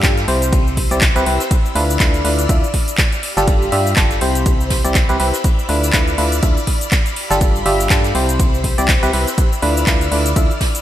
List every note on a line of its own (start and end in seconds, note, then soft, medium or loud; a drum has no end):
0.00 0.26 G2 loud
0.00 0.25 D4 medium
0.00 0.25 F4 medium
0.00 0.27 G4 medium
0.00 0.25 G4 medium
0.00 0.25 A4 medium
0.00 0.27 F5 medium
0.00 3.19 B5 medium
0.00 kick loud
0.00 clap loud
0.00 closed hi-hat medium
0.04 snare loud
0.04 shaker medium
0.17 snare soft
0.17 closed hi-hat soft
0.17 shaker soft
0.28 0.88 C2 loud
0.28 0.88 C3 medium
0.28 0.88 C4 medium
0.28 0.88 E4 medium
0.28 0.88 G4 medium
0.28 1.50 C5 medium
0.28 0.88 C5 medium
0.28 3.20 E6 medium
0.28 open hi-hat loud
0.28 ride medium
0.42 closed hi-hat medium
0.42 shaker medium
0.53 kick loud
0.53 closed hi-hat medium
0.53 ride medium
0.53 shaker medium
0.67 shaker soft
0.77 kick medium
0.77 open hi-hat loud
0.77 ride medium
0.91 1.13 C2 loud
0.91 1.03 C3 medium
0.91 1.03 C4 medium
0.91 1.03 E4 medium
0.91 1.03 G4 medium
0.91 1.03 D5 loud
0.91 closed hi-hat medium
0.91 shaker medium
1.01 kick loud
1.01 snare loud
1.01 clap loud
1.01 closed hi-hat medium
1.01 ride medium
1.01 shaker medium
1.16 1.24 C2 loud
1.16 1.24 C3 loud
1.16 1.24 C4 medium
1.16 1.24 E4 medium
1.16 1.24 G4 medium
1.16 1.24 B4 loud
1.16 closed hi-hat soft
1.16 shaker soft
1.26 1.39 C2 medium
1.26 1.41 C4 medium
1.26 1.41 E4 medium
1.26 1.41 G4 medium
1.26 1.41 B4 medium
1.26 open hi-hat loud
1.26 ride medium
1.40 snare medium
1.40 closed hi-hat soft
1.40 shaker medium
1.50 3.21 D5 medium
1.50 3.21 F6 medium
1.50 kick loud
1.50 closed hi-hat medium
1.50 ride medium
1.50 shaker medium
1.66 shaker soft
1.75 1.98 D2 medium
1.75 1.98 D3 medium
1.75 1.97 D4 medium
1.75 1.97 E4 medium
1.75 1.98 F4 medium
1.75 1.98 B4 medium
1.75 open hi-hat loud
1.75 ride medium
1.90 shaker medium
2.00 2.23 D2 medium
2.00 2.22 D3 medium
2.00 2.22 D4 medium
2.00 2.22 E4 medium
2.00 2.22 F4 medium
2.00 2.22 B4 medium
2.00 kick loud
2.00 snare loud
2.00 clap loud
2.00 closed hi-hat medium
2.00 ride medium
2.00 shaker medium
2.14 closed hi-hat soft
2.14 shaker soft
2.25 2.47 D2 medium
2.25 2.46 D3 medium
2.25 2.46 D4 medium
2.25 2.46 E4 medium
2.25 2.46 F4 medium
2.25 2.46 B4 medium
2.25 open hi-hat medium
2.25 open hi-hat loud
2.39 closed hi-hat medium
2.39 shaker medium
2.49 2.62 D2 loud
2.49 2.64 D3 medium
2.49 2.64 D4 medium
2.49 2.64 E4 medium
2.49 2.64 F4 medium
2.49 2.64 E5 medium
2.49 kick loud
2.49 closed hi-hat medium
2.49 ride medium
2.49 shaker medium
2.64 shaker soft
2.73 kick medium
2.73 open hi-hat loud
2.73 ride medium
2.88 closed hi-hat medium
2.88 shaker medium
2.98 kick loud
2.98 snare loud
2.98 clap loud
2.98 closed hi-hat medium
2.98 shaker medium
3.12 closed hi-hat soft
3.12 shaker soft
3.23 4.20 G4 medium
3.23 4.20 F5 medium
3.23 10.82 B5 medium
3.23 open hi-hat loud
3.23 ride medium
3.36 3.70 G1 medium
3.36 3.70 G3 medium
3.36 3.70 D4 medium
3.36 3.70 F4 medium
3.36 3.70 G4 medium
3.36 3.70 A4 loud
3.36 snare medium
3.36 closed hi-hat soft
3.36 shaker medium
3.48 kick loud
3.48 closed hi-hat medium
3.48 ride medium
3.48 shaker medium
3.62 shaker soft
3.72 3.95 G2 medium
3.72 3.94 G3 medium
3.72 3.94 D4 medium
3.72 3.94 F4 medium
3.72 3.94 G4 medium
3.72 3.94 E5 loud
3.72 open hi-hat loud
3.72 ride medium
3.87 shaker medium
3.96 4.19 G1 loud
3.96 4.19 D4 medium
3.96 4.19 F4 medium
3.96 4.19 G4 medium
3.96 4.19 A4 medium
3.96 kick loud
3.96 snare loud
3.96 clap loud
3.96 closed hi-hat medium
3.96 ride medium
3.96 shaker medium
4.11 snare soft
4.11 closed hi-hat soft
4.11 shaker soft
4.21 4.82 C2 loud
4.21 4.81 C3 medium
4.21 4.81 C4 medium
4.21 4.81 E4 medium
4.21 4.81 G4 medium
4.21 4.81 C5 medium
4.21 5.43 C5 medium
4.21 7.13 E6 medium
4.21 open hi-hat loud
4.21 ride medium
4.35 closed hi-hat medium
4.35 shaker medium
4.46 kick loud
4.46 closed hi-hat medium
4.46 ride medium
4.46 shaker medium
4.61 shaker soft
4.70 kick medium
4.70 snare loud
4.70 open hi-hat loud
4.70 ride medium
4.84 5.06 C2 loud
4.84 4.96 C3 medium
4.84 4.96 C4 medium
4.84 4.96 E4 medium
4.84 4.96 G4 medium
4.84 4.96 D5 medium
4.84 closed hi-hat soft
4.84 shaker medium
4.95 kick loud
4.95 snare loud
4.95 clap loud
4.95 closed hi-hat medium
4.95 ride loud
4.95 shaker medium
5.09 5.18 C2 loud
5.09 5.17 C3 medium
5.09 5.17 C4 medium
5.09 5.17 E4 medium
5.09 5.17 G4 medium
5.09 5.17 B4 loud
5.09 closed hi-hat soft
5.09 shaker soft
5.20 5.32 C2 loud
5.20 5.35 C4 medium
5.20 5.35 E4 medium
5.20 5.35 G4 medium
5.20 5.35 B4 medium
5.20 open hi-hat loud
5.20 ride medium
5.33 snare soft
5.33 closed hi-hat soft
5.33 shaker medium
5.44 7.15 D5 medium
5.44 7.15 F6 medium
5.44 kick loud
5.44 closed hi-hat medium
5.44 ride medium
5.44 shaker medium
5.59 shaker soft
5.69 5.91 D2 medium
5.69 5.91 D3 medium
5.69 5.91 D4 medium
5.69 5.91 E4 medium
5.69 5.91 F4 medium
5.69 5.91 B4 medium
5.69 open hi-hat loud
5.69 ride medium
5.84 shaker medium
5.93 6.16 D2 loud
5.93 6.16 D3 medium
5.93 6.16 D4 medium
5.93 6.16 E4 medium
5.93 6.16 F4 medium
5.93 6.16 B4 medium
5.93 kick loud
5.93 snare loud
5.93 clap loud
5.93 closed hi-hat medium
5.93 shaker medium
6.08 closed hi-hat soft
6.08 shaker soft
6.18 6.41 D2 loud
6.18 6.39 D3 medium
6.18 6.39 D4 medium
6.18 6.39 E4 medium
6.18 6.39 F4 medium
6.18 6.39 B4 medium
6.18 open hi-hat medium
6.32 closed hi-hat medium
6.32 shaker medium
6.42 6.55 D2 loud
6.42 6.58 D3 medium
6.42 6.58 D4 medium
6.42 6.58 E4 medium
6.42 6.58 F4 medium
6.42 6.58 E5 medium
6.42 kick loud
6.42 closed hi-hat medium
6.42 ride loud
6.42 shaker medium
6.57 shaker soft
6.67 kick medium
6.67 open hi-hat loud
6.67 ride medium
6.81 closed hi-hat soft
6.81 shaker medium
6.91 kick loud
6.91 snare loud
6.91 clap loud
6.91 closed hi-hat medium
6.91 ride medium
6.91 shaker medium
7.06 closed hi-hat soft
7.06 shaker soft
7.16 8.14 G4 medium
7.16 8.14 F5 medium
7.16 open hi-hat medium
7.16 ride medium
7.30 7.64 G1 loud
7.30 7.63 G3 medium
7.30 7.63 D4 medium
7.30 7.63 F4 medium
7.30 7.63 G4 medium
7.30 7.63 A4 loud
7.30 snare medium
7.30 closed hi-hat soft
7.30 shaker medium
7.41 kick loud
7.41 closed hi-hat medium
7.41 ride medium
7.41 shaker medium
7.56 shaker soft
7.66 7.88 G1 loud
7.66 7.88 G3 loud
7.66 7.88 D4 medium
7.66 7.88 F4 medium
7.66 7.88 G4 medium
7.66 7.88 E5 loud
7.66 open hi-hat loud
7.66 ride medium
7.80 shaker medium
7.90 8.13 G2 medium
7.90 8.12 D4 medium
7.90 8.12 F4 medium
7.90 8.12 G4 medium
7.90 8.12 A4 medium
7.90 kick loud
7.90 snare loud
7.90 clap loud
7.90 closed hi-hat medium
7.90 ride medium
7.90 shaker medium
8.04 snare soft
8.04 closed hi-hat soft
8.04 shaker soft
8.15 8.75 C2 loud
8.15 8.75 C3 medium
8.15 8.75 C4 medium
8.15 8.75 E4 medium
8.15 8.75 G4 medium
8.15 9.37 C5 medium
8.15 8.75 C5 medium
8.15 10.82 E6 medium
8.15 open hi-hat medium
8.15 ride medium
8.29 closed hi-hat medium
8.29 shaker medium
8.39 kick loud
8.39 closed hi-hat medium
8.39 ride medium
8.39 shaker medium
8.54 shaker soft
8.64 kick medium
8.64 open hi-hat loud
8.64 ride medium
8.78 9.00 C2 loud
8.78 8.90 C3 medium
8.78 8.90 C4 medium
8.78 8.90 E4 medium
8.78 8.90 G4 medium
8.78 8.90 D5 loud
8.78 closed hi-hat medium
8.78 shaker medium
8.88 kick loud
8.88 snare loud
8.88 clap loud
8.88 closed hi-hat medium
8.88 ride medium
8.88 shaker medium
9.03 9.11 C2 loud
9.03 9.11 C3 loud
9.03 9.11 C4 medium
9.03 9.11 E4 medium
9.03 9.11 G4 medium
9.03 9.11 B4 loud
9.03 closed hi-hat soft
9.03 shaker soft
9.13 9.26 C2 loud
9.13 9.28 C4 medium
9.13 9.28 E4 medium
9.13 9.28 G4 medium
9.13 9.28 B4 medium
9.13 open hi-hat medium
9.13 ride medium
9.27 snare medium
9.27 closed hi-hat soft
9.27 shaker medium
9.38 10.82 D5 medium
9.38 10.82 F6 medium
9.38 kick loud
9.38 closed hi-hat medium
9.38 ride medium
9.38 shaker medium
9.53 shaker soft
9.62 9.85 D2 medium
9.62 9.84 D3 medium
9.62 9.84 D4 medium
9.62 9.84 E4 medium
9.62 9.84 F4 medium
9.62 9.84 B4 medium
9.62 open hi-hat medium
9.62 ride medium
9.77 shaker medium
9.87 10.09 D2 loud
9.87 10.09 D3 medium
9.87 10.09 D4 medium
9.87 10.09 E4 medium
9.87 10.09 F4 medium
9.87 10.09 B4 medium
9.87 kick loud
9.87 snare loud
9.87 clap loud
9.87 closed hi-hat medium
9.87 ride medium
9.87 shaker medium
10.01 closed hi-hat soft
10.01 shaker soft
10.12 10.34 D2 loud
10.12 10.33 D3 medium
10.12 10.33 D4 medium
10.12 10.33 E4 medium
10.12 10.33 F4 medium
10.12 10.33 B4 medium
10.12 open hi-hat medium
10.26 closed hi-hat medium
10.26 shaker medium
10.35 10.49 D2 loud
10.35 10.51 D3 medium
10.35 10.51 D4 medium
10.35 10.51 E4 medium
10.35 10.51 F4 medium
10.35 10.51 E5 medium
10.35 kick loud
10.35 closed hi-hat medium
10.35 ride medium
10.35 shaker medium
10.51 shaker soft
10.60 kick medium
10.60 snare loud
10.60 open hi-hat loud
10.60 ride medium
10.75 closed hi-hat medium
10.75 shaker medium